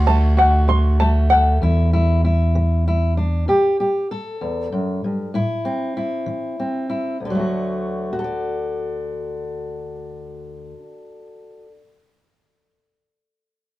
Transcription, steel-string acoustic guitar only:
0.00 0.31 D2 medium
0.00 0.36 F#4 medium
0.07 0.99 A3 medium
0.37 1.30 F#4 medium
0.68 1.23 D3 soft
1.01 1.62 A3 soft
1.31 1.58 A4 soft
1.62 2.17 E2 medium
1.62 1.93 E4 medium
1.93 2.24 E4 medium
2.24 2.87 E4 soft
2.55 3.10 E3 medium
2.88 3.17 E4 medium
3.17 3.48 D4 soft
3.48 4.03 E2 medium
3.48 3.79 G4 medium
3.80 4.10 G4 medium
4.11 5.31 A4 soft
4.41 4.72 E2 medium
4.72 5.03 F#2 medium
5.04 5.34 G2 soft
5.34 5.90 A2 medium
5.34 5.96 E4 medium
5.65 6.58 C4 soft
5.97 6.88 E4 soft
6.26 6.82 E3 soft
6.60 7.17 C4 soft
6.90 7.16 E4 soft
7.20 10.73 D2 soft
7.25 10.78 D3 soft
7.30 8.12 F#3 soft
7.35 8.19 A3 soft
7.40 8.13 F#4 soft
8.13 11.66 F#4 soft
8.19 11.72 A4 soft
8.24 11.77 D5 soft

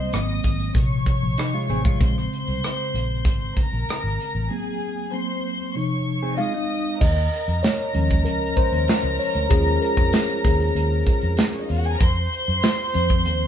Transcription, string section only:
0.00 0.11 C5 medium
0.00 0.11 C6 medium
0.12 0.74 D#5 medium
0.12 0.74 D#6 medium
0.75 1.98 C#5 medium
0.75 1.98 C#6 medium
2.01 3.54 C5 medium
2.01 3.54 C6 medium
3.56 4.49 A#4 medium
3.56 4.49 A#5 medium
4.50 5.12 G#4 medium
4.50 5.12 G#5 medium
5.12 5.74 C5 medium
5.12 5.74 C6 medium
5.75 6.37 C#5 medium
5.75 6.37 C#6 medium
6.38 6.99 D#5 medium
6.38 7.00 D#6 medium
7.00 11.43 A#4 medium
7.00 11.43 A#5 medium
11.52 11.61 C#4 medium
11.52 11.61 C#5 medium
11.61 11.69 D#4 medium
11.61 11.69 D#5 medium
11.69 11.77 F4 medium
11.69 11.77 F5 medium
11.77 11.85 F#4 medium
11.77 11.85 F#5 medium
11.85 11.93 G#4 medium
11.85 11.93 G#5 medium
11.94 12.01 A#4 medium
11.94 12.01 A#5 medium
12.01 13.47 C5 medium
12.01 13.47 C6 loud

